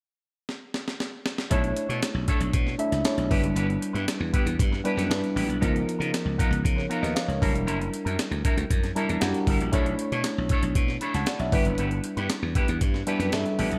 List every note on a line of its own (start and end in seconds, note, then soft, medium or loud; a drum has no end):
0.49 snare medium
0.74 snare medium
0.88 snare medium
1.00 snare medium
1.26 snare medium
1.38 snare medium
1.50 1.71 B1 loud
1.50 2.23 A3 medium
1.50 1.71 D4 medium
1.50 2.23 D4 medium
1.50 1.64 E4 medium
1.50 2.24 E4 medium
1.50 1.63 A4 medium
1.50 2.24 C#5 loud
1.50 1.62 C#5 medium
1.50 kick medium
1.50 closed hi-hat medium
1.63 muted clean electric guitar stroke soft
1.63 closed hi-hat soft
1.76 muted clean electric guitar stroke soft
1.76 closed hi-hat medium
1.89 2.00 B2 medium
1.89 2.00 D4 soft
1.89 2.01 E4 soft
1.89 2.02 A4 soft
1.89 2.02 C#5 medium
1.89 closed hi-hat soft
2.02 muted clean electric guitar stroke soft
2.02 snare loud
2.02 closed hi-hat loud
2.14 2.25 B1 medium
2.14 muted clean electric guitar stroke soft
2.27 2.48 D4 medium
2.27 2.41 E4 medium
2.27 2.40 A4 medium
2.27 2.40 C#5 medium
2.27 kick medium
2.27 closed hi-hat medium
2.40 2.51 B1 medium
2.40 muted clean electric guitar stroke medium
2.40 closed hi-hat soft
2.53 2.74 B2 loud
2.53 muted clean electric guitar stroke soft
2.53 kick medium
2.53 closed hi-hat medium
2.67 muted clean electric guitar stroke soft
2.67 snare soft
2.78 2.97 A3 medium
2.78 2.97 D4 medium
2.78 2.97 E4 medium
2.78 2.98 E5 loud
2.78 closed hi-hat medium
2.92 3.02 C#2 medium
2.92 muted clean electric guitar stroke soft
2.92 snare soft
2.92 closed hi-hat medium
3.04 3.30 A3 medium
3.04 3.29 D4 medium
3.04 3.30 E4 medium
3.04 3.31 C#5 medium
3.04 muted clean electric guitar stroke soft
3.04 snare loud
3.04 closed hi-hat medium
3.17 3.28 B1 medium
3.17 muted clean electric guitar stroke soft
3.17 closed hi-hat soft
3.30 3.41 G1 medium
3.30 4.12 G3 medium
3.30 3.51 B3 medium
3.30 4.13 D4 medium
3.30 4.13 E4 medium
3.30 3.43 E4 medium
3.30 3.42 G4 medium
3.30 4.13 B4 medium
3.30 3.41 B4 medium
3.30 kick loud
3.30 open hi-hat medium
3.42 3.53 F#1 medium
3.42 muted clean electric guitar stroke soft
3.42 closed hi-hat medium
3.56 3.77 G1 loud
3.56 3.77 B3 medium
3.56 3.68 E4 medium
3.56 3.68 G4 medium
3.56 3.67 B4 medium
3.56 closed hi-hat medium
3.68 muted clean electric guitar stroke soft
3.68 closed hi-hat soft
3.81 muted clean electric guitar stroke soft
3.81 closed hi-hat medium
3.93 4.05 G2 medium
3.93 4.06 B3 medium
3.93 4.06 E4 medium
3.93 4.07 G4 medium
3.93 4.07 B4 medium
3.93 closed hi-hat soft
4.07 muted clean electric guitar stroke soft
4.07 snare medium
4.07 closed hi-hat medium
4.19 4.31 E2 medium
4.19 muted clean electric guitar stroke soft
4.33 4.54 B3 medium
4.33 4.46 E4 medium
4.33 4.46 G4 medium
4.33 4.45 B4 medium
4.33 kick medium
4.33 closed hi-hat medium
4.46 4.57 E2 medium
4.46 muted clean electric guitar stroke soft
4.46 closed hi-hat medium
4.59 4.80 G2 medium
4.59 muted clean electric guitar stroke soft
4.59 kick loud
4.59 closed hi-hat medium
4.72 muted clean electric guitar stroke soft
4.72 snare soft
4.84 5.03 G3 medium
4.84 4.98 B3 medium
4.84 5.03 D4 medium
4.84 4.97 E4 medium
4.84 5.03 E4 medium
4.84 4.96 G4 medium
4.84 4.96 B4 medium
4.84 5.03 B4 medium
4.84 closed hi-hat medium
4.97 5.08 F#2 medium
4.97 5.09 B3 medium
4.97 5.09 E4 medium
4.97 5.10 G4 medium
4.97 5.10 B4 medium
4.97 snare soft
4.97 closed hi-hat medium
5.09 5.20 G2 loud
5.09 5.46 G3 medium
5.09 5.46 D4 medium
5.09 5.47 E4 medium
5.09 5.47 B4 medium
5.09 muted clean electric guitar stroke soft
5.09 snare loud
5.09 closed hi-hat medium
5.22 muted clean electric guitar stroke soft
5.22 closed hi-hat soft
5.35 5.46 A1 medium
5.35 5.56 B3 medium
5.35 5.49 E4 medium
5.35 5.48 G4 medium
5.35 5.47 B4 medium
5.35 open hi-hat medium
5.48 5.59 B1 medium
5.48 muted clean electric guitar stroke soft
5.48 closed hi-hat soft
5.61 5.82 C#2 loud
5.61 6.34 F3 loud
5.61 5.82 B3 medium
5.61 6.34 B3 medium
5.61 5.74 D#4 medium
5.61 6.34 D#4 medium
5.61 5.73 F4 medium
5.61 5.72 A#4 medium
5.61 6.35 A#4 loud
5.61 kick medium
5.61 closed hi-hat medium
5.73 muted clean electric guitar stroke soft
5.73 closed hi-hat soft
5.86 muted clean electric guitar stroke soft
5.86 closed hi-hat medium
5.99 6.10 C#3 medium
5.99 6.11 B3 medium
5.99 6.12 D#4 soft
5.99 6.12 F4 medium
5.99 6.12 A#4 medium
5.99 closed hi-hat soft
6.12 muted clean electric guitar stroke soft
6.12 snare medium
6.12 closed hi-hat medium
6.25 6.36 C#2 medium
6.25 muted clean electric guitar stroke soft
6.38 6.59 B3 medium
6.38 6.51 D#4 medium
6.38 6.50 F4 medium
6.38 6.50 A#4 medium
6.38 kick medium
6.38 closed hi-hat medium
6.51 6.61 C#2 medium
6.51 muted clean electric guitar stroke soft
6.51 closed hi-hat medium
6.63 6.85 C#3 loud
6.63 muted clean electric guitar stroke soft
6.63 kick medium
6.63 closed hi-hat medium
6.76 7.02 A#4 soft
6.76 7.02 C#5 soft
6.76 muted clean electric guitar stroke soft
6.76 snare soft
6.89 7.02 B3 medium
6.89 7.02 D#4 medium
6.89 7.01 F4 medium
6.89 7.01 A#4 medium
6.89 closed hi-hat medium
7.02 7.13 D#2 medium
7.02 7.14 B3 medium
7.02 7.14 D#4 medium
7.02 7.15 F4 medium
7.02 7.15 A#4 medium
7.02 7.15 B4 medium
7.02 7.15 D#5 medium
7.02 snare soft
7.02 closed hi-hat medium
7.15 7.27 C#5 medium
7.15 7.28 F5 medium
7.15 muted clean electric guitar stroke soft
7.15 snare loud
7.15 closed hi-hat medium
7.28 7.39 C#2 medium
7.28 7.41 A#4 soft
7.28 7.53 C#5 medium
7.28 muted clean electric guitar stroke soft
7.28 closed hi-hat soft
7.41 7.55 F#1 medium
7.41 8.24 G3 medium
7.41 7.62 G3 medium
7.41 8.24 D4 medium
7.41 7.54 D4 medium
7.41 8.24 E4 medium
7.41 7.53 E4 medium
7.41 8.24 A#4 medium
7.41 7.53 A#4 medium
7.41 kick medium
7.41 open hi-hat medium
7.54 7.67 E1 medium
7.54 muted clean electric guitar stroke soft
7.54 closed hi-hat soft
7.66 7.88 F#1 loud
7.66 7.87 G3 medium
7.66 7.79 D4 medium
7.66 7.79 E4 medium
7.66 7.78 A#4 medium
7.66 closed hi-hat medium
7.79 muted clean electric guitar stroke soft
7.79 closed hi-hat soft
7.93 muted clean electric guitar stroke soft
7.93 closed hi-hat medium
8.05 8.16 F#2 medium
8.05 8.17 G3 soft
8.05 8.18 D4 medium
8.05 8.18 E4 medium
8.05 8.19 A#4 medium
8.05 closed hi-hat soft
8.19 muted clean electric guitar stroke soft
8.19 snare medium
8.19 closed hi-hat loud
8.31 8.42 D2 medium
8.31 muted clean electric guitar stroke soft
8.31 closed hi-hat soft
8.44 8.65 G3 medium
8.44 8.57 D4 medium
8.44 8.57 E4 medium
8.44 8.56 A#4 medium
8.44 kick medium
8.44 closed hi-hat medium
8.57 8.68 D2 medium
8.57 muted clean electric guitar stroke soft
8.57 closed hi-hat medium
8.70 8.91 F#2 medium
8.70 muted clean electric guitar stroke soft
8.70 kick loud
8.70 closed hi-hat medium
8.83 muted clean electric guitar stroke soft
8.83 snare soft
8.83 closed hi-hat soft
8.95 9.14 G3 medium
8.95 9.10 G3 medium
8.95 9.14 D4 medium
8.95 9.09 D4 medium
8.95 9.14 E4 medium
8.95 9.08 E4 medium
8.95 9.14 A#4 medium
8.95 9.07 A#4 medium
8.95 9.20 A#5 medium
8.95 closed hi-hat medium
9.09 9.19 E2 medium
9.09 9.21 G3 medium
9.09 9.22 D4 medium
9.09 9.22 E4 medium
9.09 9.22 A#4 medium
9.09 closed hi-hat soft
9.20 9.32 F#2 loud
9.20 9.57 G3 medium
9.20 9.57 D4 medium
9.20 9.58 E4 medium
9.20 9.28 F#4 medium
9.20 9.69 F#5 medium
9.20 muted clean electric guitar stroke soft
9.20 snare loud
9.20 closed hi-hat medium
9.27 9.61 G4 medium
9.34 muted clean electric guitar stroke soft
9.34 closed hi-hat soft
9.47 9.57 G1 medium
9.47 9.68 G3 medium
9.47 9.61 D4 medium
9.47 9.60 E4 medium
9.47 9.60 A#4 loud
9.47 kick medium
9.47 open hi-hat medium
9.61 9.73 A#1 medium
9.61 muted clean electric guitar stroke soft
9.61 closed hi-hat soft
9.72 9.94 B1 medium
9.72 10.45 A3 loud
9.72 10.45 D4 medium
9.72 9.94 D4 medium
9.72 10.45 E4 medium
9.72 9.87 E4 medium
9.72 9.86 A4 medium
9.72 10.46 C#5 loud
9.72 9.86 C#5 medium
9.72 kick loud
9.72 closed hi-hat medium
9.86 muted clean electric guitar stroke soft
9.86 closed hi-hat soft
9.99 muted clean electric guitar stroke soft
9.99 closed hi-hat medium
10.12 10.22 B2 medium
10.12 10.24 D4 soft
10.12 10.25 E4 medium
10.12 10.25 A4 medium
10.12 10.25 C#5 medium
10.12 closed hi-hat soft
10.24 muted clean electric guitar stroke soft
10.24 snare medium
10.24 closed hi-hat loud
10.38 10.48 B1 medium
10.38 muted clean electric guitar stroke soft
10.49 10.71 D4 medium
10.49 10.64 E4 medium
10.49 10.64 A4 medium
10.49 10.63 C#5 loud
10.49 kick medium
10.49 closed hi-hat medium
10.63 10.73 B1 medium
10.63 muted clean electric guitar stroke soft
10.63 closed hi-hat medium
10.75 10.96 B2 loud
10.75 muted clean electric guitar stroke soft
10.75 kick loud
10.75 closed hi-hat medium
10.88 muted clean electric guitar stroke soft
10.88 snare soft
11.01 11.15 D4 medium
11.01 11.14 E4 medium
11.01 11.14 A4 medium
11.01 11.13 C#5 medium
11.01 11.14 B5 medium
11.01 closed hi-hat medium
11.14 11.25 C#2 medium
11.14 11.26 D4 medium
11.14 11.27 E4 soft
11.14 11.27 A4 medium
11.14 11.27 C#5 medium
11.14 11.26 F#5 medium
11.14 11.27 A5 medium
11.14 snare soft
11.14 closed hi-hat medium
11.26 11.40 D5 medium
11.26 11.39 F#5 medium
11.26 muted clean electric guitar stroke soft
11.26 snare loud
11.26 closed hi-hat medium
11.39 11.50 B1 loud
11.39 11.65 C#5 soft
11.39 11.64 E5 medium
11.39 muted clean electric guitar stroke soft
11.39 closed hi-hat soft
11.52 11.63 G1 medium
11.52 12.34 G3 medium
11.52 11.73 B3 medium
11.52 12.35 D4 medium
11.52 12.35 E4 medium
11.52 11.65 E4 medium
11.52 11.65 G4 loud
11.52 12.35 B4 medium
11.52 11.65 B4 medium
11.52 kick loud
11.52 open hi-hat medium
11.65 11.76 F#1 medium
11.65 muted clean electric guitar stroke soft
11.65 closed hi-hat soft
11.78 11.99 G1 medium
11.78 11.99 B3 medium
11.78 11.91 E4 medium
11.78 11.91 G4 medium
11.78 11.90 B4 medium
11.78 closed hi-hat medium
11.91 muted clean electric guitar stroke soft
11.91 closed hi-hat soft
12.04 muted clean electric guitar stroke soft
12.04 closed hi-hat medium
12.17 12.27 G2 medium
12.17 12.29 B3 medium
12.17 12.29 E4 medium
12.17 12.30 G4 medium
12.17 12.30 B4 medium
12.17 closed hi-hat soft
12.29 muted clean electric guitar stroke soft
12.29 snare medium
12.29 closed hi-hat medium
12.43 12.53 E2 medium
12.43 muted clean electric guitar stroke soft
12.55 12.76 B3 medium
12.55 12.69 E4 medium
12.55 12.68 G4 medium
12.55 12.67 B4 medium
12.55 kick medium
12.55 closed hi-hat medium
12.68 12.79 E2 medium
12.68 muted clean electric guitar stroke soft
12.68 closed hi-hat medium
12.81 13.02 G2 loud
12.81 muted clean electric guitar stroke soft
12.81 kick loud
12.81 closed hi-hat medium
12.94 muted clean electric guitar stroke soft
12.94 snare soft
13.07 13.25 G3 medium
13.07 13.20 B3 medium
13.07 13.25 D4 medium
13.07 13.20 E4 medium
13.07 13.25 E4 medium
13.07 13.19 G4 medium
13.07 13.26 B4 medium
13.07 13.18 B4 loud
13.07 closed hi-hat medium
13.19 13.30 F#2 medium
13.19 13.31 B3 medium
13.19 13.32 E4 medium
13.19 13.32 G4 medium
13.19 13.32 B4 medium
13.19 snare soft
13.19 closed hi-hat medium
13.32 13.43 G2 loud
13.32 13.69 G3 medium
13.32 13.69 D4 medium
13.32 13.69 E4 medium
13.32 13.69 A4 medium
13.32 13.57 E5 medium
13.32 muted clean electric guitar stroke soft
13.32 snare loud
13.32 closed hi-hat medium
13.45 muted clean electric guitar stroke soft
13.45 closed hi-hat soft
13.58 13.69 A1 medium
13.58 13.79 B3 medium
13.58 13.71 E4 medium
13.58 13.71 G4 medium
13.58 13.69 B4 medium
13.58 13.79 A5 medium
13.58 open hi-hat medium
13.71 13.79 B1 medium
13.71 muted clean electric guitar stroke soft
13.71 closed hi-hat soft